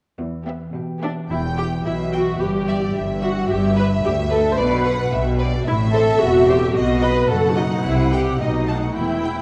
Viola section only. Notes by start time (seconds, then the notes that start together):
0.47 B3
1.03 B3 D4
1.31 E4
1.58 G4
1.85 E4
2.14 F#4
2.41 G4
3.23 F#4
3.50 G4
3.77 B4
4.05 G4
4.31 A4
4.51 C5
4.58 B4
5.67 E4
5.94 A4
6.21 F#4
6.48 G4
6.75 F#4
7.03 B4
7.30 A4
7.58 D#4
7.85 E4
8.13 G4
8.41 D#4
8.96 E4